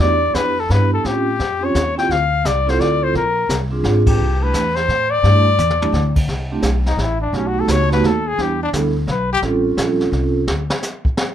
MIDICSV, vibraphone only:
0, 0, Header, 1, 2, 480
1, 0, Start_track
1, 0, Key_signature, 0, "major"
1, 0, Tempo, 349447
1, 1426, Time_signature, 3, 2, 24, 8
1, 15588, End_track
2, 0, Start_track
2, 0, Title_t, "Vibraphone"
2, 0, Program_c, 0, 11
2, 0, Note_on_c, 0, 59, 57
2, 0, Note_on_c, 0, 62, 54
2, 0, Note_on_c, 0, 64, 52
2, 7, Note_on_c, 0, 67, 63
2, 714, Note_off_c, 0, 59, 0
2, 719, Note_off_c, 0, 64, 0
2, 721, Note_off_c, 0, 62, 0
2, 726, Note_off_c, 0, 67, 0
2, 932, Note_on_c, 0, 59, 60
2, 942, Note_on_c, 0, 62, 56
2, 949, Note_on_c, 0, 64, 55
2, 959, Note_on_c, 0, 67, 66
2, 1417, Note_on_c, 0, 60, 58
2, 1419, Note_off_c, 0, 59, 0
2, 1423, Note_off_c, 0, 62, 0
2, 1423, Note_off_c, 0, 67, 0
2, 1423, Note_on_c, 0, 61, 53
2, 1427, Note_off_c, 0, 64, 0
2, 1431, Note_on_c, 0, 65, 51
2, 1440, Note_on_c, 0, 67, 66
2, 1701, Note_off_c, 0, 60, 0
2, 1704, Note_off_c, 0, 61, 0
2, 1709, Note_off_c, 0, 65, 0
2, 1713, Note_off_c, 0, 67, 0
2, 2199, Note_on_c, 0, 60, 62
2, 2208, Note_on_c, 0, 65, 57
2, 2210, Note_on_c, 0, 61, 60
2, 2220, Note_on_c, 0, 67, 72
2, 2360, Note_off_c, 0, 60, 0
2, 2365, Note_off_c, 0, 61, 0
2, 2365, Note_off_c, 0, 65, 0
2, 2370, Note_off_c, 0, 67, 0
2, 2688, Note_on_c, 0, 60, 66
2, 2693, Note_on_c, 0, 64, 59
2, 2700, Note_on_c, 0, 65, 58
2, 2704, Note_on_c, 0, 67, 73
2, 2844, Note_off_c, 0, 60, 0
2, 2847, Note_off_c, 0, 64, 0
2, 2850, Note_off_c, 0, 65, 0
2, 2853, Note_off_c, 0, 67, 0
2, 3659, Note_on_c, 0, 60, 68
2, 3659, Note_on_c, 0, 64, 60
2, 3675, Note_on_c, 0, 65, 61
2, 3678, Note_on_c, 0, 69, 73
2, 4274, Note_off_c, 0, 60, 0
2, 4274, Note_off_c, 0, 64, 0
2, 4282, Note_off_c, 0, 65, 0
2, 4283, Note_off_c, 0, 69, 0
2, 5088, Note_on_c, 0, 60, 68
2, 5103, Note_on_c, 0, 62, 59
2, 5108, Note_on_c, 0, 65, 63
2, 5120, Note_on_c, 0, 68, 76
2, 5709, Note_off_c, 0, 60, 0
2, 5716, Note_off_c, 0, 62, 0
2, 5719, Note_off_c, 0, 65, 0
2, 5725, Note_off_c, 0, 68, 0
2, 6060, Note_on_c, 0, 57, 60
2, 6071, Note_on_c, 0, 62, 55
2, 6076, Note_on_c, 0, 64, 55
2, 6078, Note_on_c, 0, 67, 72
2, 6212, Note_off_c, 0, 57, 0
2, 6217, Note_off_c, 0, 62, 0
2, 6220, Note_off_c, 0, 64, 0
2, 6221, Note_off_c, 0, 67, 0
2, 7180, Note_on_c, 0, 57, 58
2, 7188, Note_on_c, 0, 62, 53
2, 7191, Note_on_c, 0, 64, 52
2, 7195, Note_on_c, 0, 67, 65
2, 7465, Note_off_c, 0, 57, 0
2, 7469, Note_off_c, 0, 62, 0
2, 7471, Note_off_c, 0, 64, 0
2, 7473, Note_off_c, 0, 67, 0
2, 7978, Note_on_c, 0, 57, 62
2, 7984, Note_on_c, 0, 62, 61
2, 7986, Note_on_c, 0, 64, 60
2, 7999, Note_on_c, 0, 67, 72
2, 8131, Note_off_c, 0, 57, 0
2, 8135, Note_off_c, 0, 62, 0
2, 8136, Note_off_c, 0, 64, 0
2, 8142, Note_off_c, 0, 67, 0
2, 8945, Note_on_c, 0, 57, 58
2, 8945, Note_on_c, 0, 60, 56
2, 8948, Note_on_c, 0, 62, 55
2, 8959, Note_on_c, 0, 64, 56
2, 8960, Note_on_c, 0, 67, 65
2, 9095, Note_off_c, 0, 57, 0
2, 9095, Note_off_c, 0, 60, 0
2, 9097, Note_off_c, 0, 62, 0
2, 9102, Note_off_c, 0, 64, 0
2, 9102, Note_off_c, 0, 67, 0
2, 10064, Note_on_c, 0, 59, 54
2, 10068, Note_on_c, 0, 57, 58
2, 10076, Note_on_c, 0, 66, 51
2, 10082, Note_on_c, 0, 63, 52
2, 10088, Note_on_c, 0, 67, 63
2, 10797, Note_off_c, 0, 59, 0
2, 10798, Note_off_c, 0, 57, 0
2, 10803, Note_off_c, 0, 66, 0
2, 10806, Note_off_c, 0, 63, 0
2, 10808, Note_off_c, 0, 67, 0
2, 10844, Note_on_c, 0, 57, 68
2, 10851, Note_on_c, 0, 59, 59
2, 10855, Note_on_c, 0, 63, 62
2, 10859, Note_on_c, 0, 66, 57
2, 10861, Note_on_c, 0, 67, 69
2, 11005, Note_off_c, 0, 57, 0
2, 11008, Note_off_c, 0, 59, 0
2, 11010, Note_off_c, 0, 63, 0
2, 11012, Note_off_c, 0, 66, 0
2, 11013, Note_off_c, 0, 67, 0
2, 11506, Note_on_c, 0, 55, 57
2, 11506, Note_on_c, 0, 59, 52
2, 11510, Note_on_c, 0, 62, 55
2, 11518, Note_on_c, 0, 64, 53
2, 11526, Note_on_c, 0, 67, 63
2, 11788, Note_off_c, 0, 55, 0
2, 11789, Note_off_c, 0, 59, 0
2, 11791, Note_off_c, 0, 62, 0
2, 11794, Note_off_c, 0, 64, 0
2, 11798, Note_off_c, 0, 67, 0
2, 11987, Note_on_c, 0, 55, 61
2, 11992, Note_on_c, 0, 59, 58
2, 11999, Note_on_c, 0, 62, 57
2, 12001, Note_on_c, 0, 64, 56
2, 12010, Note_on_c, 0, 69, 69
2, 12269, Note_off_c, 0, 55, 0
2, 12271, Note_off_c, 0, 59, 0
2, 12275, Note_off_c, 0, 62, 0
2, 12276, Note_off_c, 0, 64, 0
2, 12281, Note_off_c, 0, 69, 0
2, 12917, Note_on_c, 0, 55, 65
2, 12927, Note_on_c, 0, 61, 61
2, 12932, Note_on_c, 0, 60, 60
2, 12935, Note_on_c, 0, 65, 64
2, 12945, Note_on_c, 0, 69, 74
2, 14272, Note_off_c, 0, 55, 0
2, 14277, Note_off_c, 0, 61, 0
2, 14280, Note_off_c, 0, 60, 0
2, 14281, Note_off_c, 0, 65, 0
2, 14286, Note_off_c, 0, 69, 0
2, 15588, End_track
0, 0, End_of_file